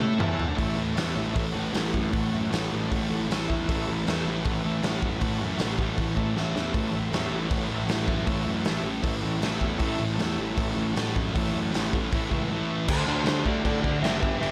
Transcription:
0.00 A2 A3 A4 E5, high tom
0.18 E2 E3 E4 A4 C#5 E5 A5, mid tom
0.39 floor tom
0.48 D2 D3 D4
0.55 A1 A2 E3 A3 A4 C#5 E5, kick, open hi-hat
0.76 A1 E3 A3
0.94 E2 A2 E3 A4 C#5 E5, open hi-hat
0.98 A3, snare
1.16 A1 E3 A3
1.31 A4 C#5 E5
1.35 A1 A2 E3, kick, open hi-hat
1.39 A3
1.51 A3 A4 C#5 F#5
1.56 A1 E3
1.70 A2 A4 C#5 F#5
1.74 A1 E3 A3, snare, open hi-hat
1.94 F#2, kick
2.09 A1 A2 E3 A4 C#5 F#5, open hi-hat
2.13 A3, kick
2.31 F#2 A3
2.36 E3
2.48 A1 A2 A4 C#5 F#5
2.53 E3 A3, snare, open hi-hat
2.71 A1 A3
2.75 E3
2.89 A1 A2 E3 A4 C#5 F#5, kick, open hi-hat
2.95 A3
3.10 A1 A3 A4 C#5 F#5
3.14 E3
3.28 A1 A2 E3 A4, open hi-hat
3.32 A3 C#5 E5, snare
3.49 E2, kick
3.67 A1 A2 E3 A4 C#5 E5, kick, open hi-hat
3.71 A3
3.87 A1 E3 A3
4.06 E2 A2 E3 A3 A4 C#5 E5, snare, open hi-hat
4.25 A1 A3
4.30 E3
4.44 A1 A2 E3 A3 A4 C#5 F#5, kick, open hi-hat
4.64 A1 E3 A3 A4 C#5 E5
4.83 A1 A2 E3 A4 C#5 F#5, snare, open hi-hat
4.87 A3
5.02 F#2, kick
5.18 A1 A2 A4 C#5 F#5, kick, open hi-hat
5.23 E3 A3
5.41 F#2 E3 A3
5.57 A1 A2 A4 C#5 F#5, snare, open hi-hat
5.63 E3 A3
5.70 snare
5.78 A1 A3, kick
5.82 E3
5.93 A1 A4 C#5 F#5
5.97 A2 E3, kick, open hi-hat
6.02 A3
6.15 A1 A3 A4 C#5 E5 A5, kick
6.20 E3
6.36 A1 A2 E3 A4 C#5 E5 F#5, snare
6.40 A3
6.51 E5
6.55 E2, snare
6.72 A1 A2 A4 C#5 E5, kick, open hi-hat
6.76 E3 A3
6.91 A1 A3
6.96 E3
7.11 E2 A2 E3 A3 A4 C#5 E5, snare, open hi-hat
7.29 A1 A3
7.33 E3
7.49 A1 A2 E3 A4 C#5 F#5, kick, open hi-hat
7.53 A3
7.69 A1 E3 A3 A4 C#5
7.73 E5
7.86 A1 A2 A4 C#5 F#5, open hi-hat
7.90 E3 A3, snare
8.07 F#2, kick
8.24 A1 A2 A4 C#5 E5, kick, open hi-hat
8.28 E3 A3
8.46 F#2 E3 A3
8.63 A1 A2 E3 A4 C#5 E5, snare, open hi-hat
8.69 A3
8.82 A1 A3
8.88 E3
9.02 A1 A2 E3 A4 C#5 E5, kick, open hi-hat
9.07 A3
9.22 A1 A3 A4 C#5 E5
9.26 E3
9.41 A1 A2 E3 A4 C#5 E5, snare, open hi-hat
9.46 A3
9.60 E2, kick
9.77 A1 A2 A4 C#5 E5, kick, open hi-hat
9.81 E3 A3
9.98 A1 A3
10.02 E3
10.13 A4 C#5 E5
10.19 E2 A2 E3 A3, snare, open hi-hat
10.38 A1 E3 A3
10.53 A2 A4 C#5 E5
10.57 A1 E3 A3, kick, open hi-hat
10.72 A3 A4 C#5 E5
10.77 A1 E3
10.91 A2 A4 C#5 F#5
10.96 A1 E3 A3, snare, open hi-hat
11.08 snare
11.16 F#2, kick
11.35 A1 A2 E3 A3 A4 C#5 E5, kick, open hi-hat
11.53 F#2 A3
11.57 E3
11.73 A1 A2 E3 A3 A4 C#5 F#5, snare, open hi-hat
11.93 A1 A3, kick
11.97 E3
12.11 A1 A2 E3 A3 A4 C#5 E5, kick, open hi-hat
12.31 C#2 E3 A3 A4 C#5 E5, kick
12.50 A2 E3 A3 A4 C#5 E5
12.88 D2 D3 A3 D4 F#4 A4 C5 D5, kick, crash
13.05 D2 D3 A3 D4 A4 C5
13.24 D2 D3 A3 D4 A4 C5, snare, crash
13.30 F#4 A4 C#5
13.45 D2 D3 A3 D4 A4 D5, kick
13.63 A2 D3 A3 D4 F#4 A4 D5, kick, crash
13.83 D2 D3 A3 D4 A4 D5, kick
14.02 F#1 D3 A3 D4 F#4 C5 D5 E5, snare, crash
14.06 A4
14.20 G1 G2 D3 G3 G4 B4 E5, kick
14.24 D5
14.41 G1 G2 D3 G3 B4 E5, crash

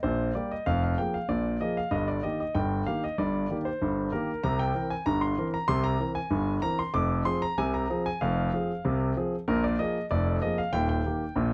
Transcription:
0.03 A#1 A#2 C5
0.35 G3 A#3 G4 D5
0.52 D#5
0.66 F1 F2 F5
0.84 F5
0.98 F3 A#3 G#4 G5
1.14 F5
1.29 A#1 A#2 D5
1.61 F3 A#3 G#4 D#5
1.77 F5
1.91 G1 G2 D#5
2.08 D5
2.23 D#3 A#3 G4 D#5
2.40 D#5
2.55 G1 G2 G5
2.86 D#3 A#3 G4 F5
3.04 D#5
3.18 G1 G2 D5
3.50 D#3 A#3 G4
3.65 C5
3.82 G1 G2
4.12 D#3 A#3 G4 A#4
4.43 C2 C3 A#5
4.59 G5
4.74 E3 C4 A#4
4.90 G#5
5.06 G1 G2 A#5
5.21 C6
5.38 E3 C4 A#4
5.54 A#5
5.68 C2 C3 C6
5.84 A#5
6.00 E3 C4 A#4
6.15 G#5
6.31 G1 G2
6.62 E3 C4 A#4 A#5
6.79 C6
6.94 F1 F2 D6
7.25 F3 C4 G#4 C6
7.42 A#5
7.58 C2 C3 G#5
7.74 A#5
7.90 F3 C4 G#4
8.06 G#5
8.21 F1 F2 F5
8.53 F3 C4 G#4
8.85 C2 C3
9.17 F3 C4 G#4
9.48 A#1 A#2 A#4
9.64 D5
9.79 F3 A#3 G#4 D#5
10.11 F1 F2 D5
10.42 F3 A#3 G#4 D#5
10.58 F5
10.73 D#1 D#2 G5
10.89 G5
11.06 D#3 A#3 G4
11.36 A#1 A#2

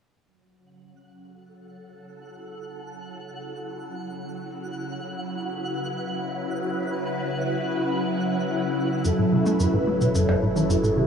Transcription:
0.24 F#3 F#5
0.56 C#3
1.18 A4
1.87 E4
5.39 B4
9.05 F#1 F#2 A4 E5, cabasa
9.19 A2
9.32 C#3
9.44 A3 A4, cabasa
9.59 F#2 B4, cabasa
9.73 A2
9.87 A3
10.01 B2, cabasa
10.14 F#2 A4, cabasa
10.28 F#2, percussion blips
10.42 A2
10.56 E3, cabasa
10.69 F#2, cabasa
10.83 A2, cabasa
10.97 C#3 G4

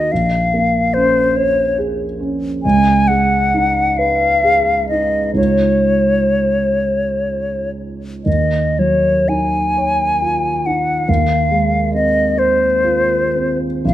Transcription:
Already playing: D#4 F#4 A#4 D#5
0.12 A#1 F5
0.54 A#3
0.94 C#4 C5
1.36 C5 C#5
1.78 G#4
2.20 C#4
2.63 C#2 G#5
3.08 G#3 F#5
3.54 D#4
3.98 B4 F5
4.44 G#4
4.89 D#4 D#5
5.33 C#2 G#3 D#4 F4 C#5
5.38 C#5
8.25 D#2 D#5
8.79 F#3 C#5
9.29 D#4 G#5
9.77 C#5
10.22 F4
10.66 D#4 F#5
11.08 D#2 F5
11.51 G#3
11.94 C4 D#5
12.38 C5
12.84 F4
13.35 C4
13.85 A#1 F5

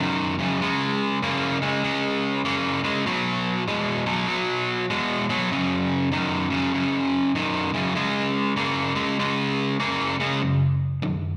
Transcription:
0.00 F#2 D#3
0.39 F#2 C#3
0.61 C#3 G#3
1.23 C#3 A#3
1.62 C#3 G#3
1.84 C#3 G#3
2.45 C#3 A#3
2.84 C#3 G#3
3.06 B2 F#3
3.68 B2 G#3
4.06 B2 F#3
4.28 B2 F#3
4.90 B2 G#3
5.29 B2 F#3
5.52 F#2 C#3
6.12 F#2 D#3
6.50 F#2 C#3
6.73 F#2 C#3
7.35 F#2 D#3
7.74 F#2 C#3
7.95 C#3 G#3
8.56 C#3 A#3
8.95 C#3 G#3
9.19 C#3 G#3
9.80 C#3 A#3
10.20 C#3 G#3
10.42 F#2 C#3
11.02 F#2 D#3

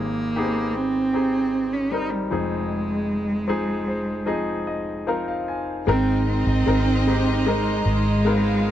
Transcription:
Already playing: G#1 G#2 C4 D#4 G4 G#4
0.00 A#3
0.36 B3 D#4 G4 G#4
0.43 C4
0.75 C4
1.13 C4 D#4 G4 G#4
1.73 C#4
1.91 G3 C4 D#4 A#4
2.13 G3
2.30 F1 F2 F3 G#3 C4 D#4 G#4
3.48 F3 C4 D#4 G#4
3.88 C5
4.26 F3 C4 D#4 G#4 D#5
4.67 D#5
5.07 F3 C4 D#4 A#4 F5
5.28 F5
5.48 G#5
5.87 G#1 G#2 G#3 C4 D#4 A#4 D#5 A#5 C6
6.29 C4
6.47 G#1
6.66 G#1 G#3 C4 D#4 A#4
7.07 G#3 C4 D#4 G4
7.46 G#3 C4 D#4 A#4
7.86 G#1 G#3
8.25 G#3 B3 D#4 F4 A#4 F5
8.32 C4

